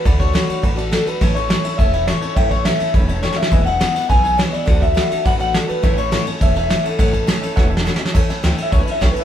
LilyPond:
<<
  \new Staff \with { instrumentName = "Upright piano" } { \time 4/4 \key a \major \tempo 4 = 208 << { r1 | r1 | r1 | r1 |
r1 | r1 | r2 r8 a''8 e''4 | r1 | } \\ { <d'' fis'' b''>8 <d'' fis'' a''>8 <d'' fis'' b''>8 <d'' fis'' b''>8 <d'' fis'' b''>8 <d'' fis'' a''>8 <d'' fis'' a''>8 <d'' fis'' b''>8 | <cis'' e'' a''>8 <cis'' e'' a''>8 <cis'' e'' a''>8 <cis'' e'' a''>8 <cis'' e'' a''>8 <cis'' e'' b''>8 <cis'' e'' a''>8 <cis'' e'' a''>8 | <cis'' e'' g''>8 <cis'' e'' a''>8 <cis'' e'' fis''>8 <cis'' e'' a''>8 <cis'' e'' b''>8 <cis'' e'' a''>8 <cis'' e'' g''>8 <cis'' e'' a''>8 | <b' e'' gis''>8 <b' e'' gis''>8 <b' e'' gis''>8 <b' e'' fis''>8 <b' e'' b''>8 <b' e'' gis''>8 <b' e'' gis''>8 <b' e'' gis''>8 |
<d'' fis'' a''>8 <d'' fis'' a''>8 <d'' fis'' b''>8 <d'' fis'' a''>8 <d'' fis'' b''>8 <d'' fis'' b''>8 <d'' fis'' a''>8 <d'' fis'' a''>8 | <cis'' e'' a''>8 <cis'' e'' b''>8 <cis'' e'' fis''>8 <cis'' e'' a''>8 <cis'' e'' a''>8 <cis'' e'' a''>8 <cis'' e'' a''>8 <cis'' e'' fis''>8 | <cis'' e'' fis''>8 <cis'' e'' a''>8 <cis'' e'' a''>8 <cis'' e'' a''>8 <cis'' e'' fis''>8 <cis'' e''>8 <cis'' fis''>8 <cis'' e'' a''>8 | <cis'' e'' a''>8 <cis'' e'' a''>8 <cis'' e'' g''>8 <cis'' e'' g''>8 <cis'' e'' a''>8 <cis'' e'' a''>8 <cis'' e'' g''>8 <cis'' e'' a''>8 | } >> }
  \new Staff \with { instrumentName = "Clean electric guitar" } { \time 4/4 \key a \major a'8 cis''8 cis''4 r4 a'8 b'8~ | b'8 cis''4. e''8 e''8 cis''8 cis''8 | e''8 cis''8 e''4 r4 cis''8 e''8~ | e''8 fis''4. gis''8 gis''8 cis''8 d''8~ |
d''8 e''4. fis''8 fis''8 a'8 b'8~ | b'8 cis''4 r8 e''8 e''4 a'8~ | a'2. r4 | r4 \tuplet 3/2 { r4 e''8 cis''8 b'8 e''8 cis''8 b'8 e''8 } | }
  \new Staff \with { instrumentName = "Steel-string acoustic guitar" } { \time 4/4 \key a \major <d a d' fis'>8 <a d' fis'>8 <d a d' fis'>8 <a d' fis'>8 <d a d' fis'>8 <a d' fis'>8 <d a d' fis'>8 <a d' fis'>8 | <a, e a cis' e'>8 <a cis' e'>8 <a, e a cis' e'>8 <a cis' e'>8 <e a cis' e'>8 <a cis' e'>8 <a, e a cis' e'>8 <a cis' e'>8 | <a, e a cis' e'>8 <a cis' e'>8 <a, e a cis' e'>8 <a cis' e'>8 <e a cis' e'>8 <a cis' e'>8 <a, e a cis' e'>8 <a cis' e'>8 | <e, b, e gis b e'>8 <e gis b e'>8 <e, b, e gis b e'>8 <e gis b e'>8 <e gis b e'>8 <e gis b e'>8 <e, b, e gis b e'>8 <e gis b e'>8 |
<d a d' fis'>8 <a d' fis'>8 <d a d' fis'>8 <a d' fis'>8 <d a d' fis'>8 <a d' fis'>8 <d a d' fis'>8 <a d' fis'>8 | <a, e a cis' e'>8 <a cis' e'>8 <a, e a cis' e'>8 <a cis' e'>8 <e a cis' e'>8 <a cis' e'>8 <a, e a cis' e'>8 <a cis' e'>8 | <a, e a cis' e'>8 <a cis' e'>8 <a, e a cis' e'>8 <a cis' e'>8 <e a cis' e'>8 <a cis' e'>8 <a, e a cis' e'>8 <a cis' e'>8 | <a, e a cis' e'>8 <a cis' e'>8 <a, e a cis' e'>8 <a cis' e'>8 <e a cis' e'>8 <a cis' e'>8 <a, e a cis' e'>8 <a cis' e'>8 | }
  \new Staff \with { instrumentName = "Upright bass" } { \clef bass \time 4/4 \key a \major d,4. r8 a,,4. r8 | a,,4. r8 e,,4. r8 | a,,4. r8 e,,4. r8 | e,,4. r8 b,,4. r8 |
d,4. r8 a,,4. r8 | a,,4. r8 e,,4. r8 | a,,4. r8 e,,4. r8 | e,8 r8 d,8 r8 cis,8 r8 b,,8 r8 | }
  \new DrumStaff \with { instrumentName = "Drums" } \drummode { \time 4/4 <bd cymr>8 <bd cymr>8 <cymr sn>8 cymr8 <bd cymr>8 cymr8 <cymr sn>8 cymr8 | <bd cymr>8 cymr8 <cymr sn>8 cymr8 <bd cymr>8 cymr8 <cymr sn>8 cymr8 | <bd cymr>8 <bd cymr>8 <cymr sn>8 <cymr sn>8 <bd cymr>8 cymr8 \tuplet 3/2 { sn8 sn8 sn8 } | <bd cymr>8 cymr8 <cymr sn>8 <cymr sn>8 <bd cymr>8 cymr8 <cymr sn>8 cymr8 |
<bd cymr>8 <bd cymr>8 <cymr sn>8 cymr8 <bd cymr>8 cymr8 <cymr sn>8 cymr8 | <bd cymr>8 cymr8 <cymr sn>8 cymr8 <bd cymr>8 cymr8 <cymr sn>8 cymr8 | <bd cymr>8 <bd cymr>8 <cymr sn>8 <cymr sn>8 \tuplet 3/2 { <bd sn>8 r8 sn8 sn8 sn8 sn8 } | <cymc bd>8 <cymr sn>8 <cymr sn>8 cymr8 <bd cymr sn>8 cymr8 <bd cymr sn>8 cymr8 | }
>>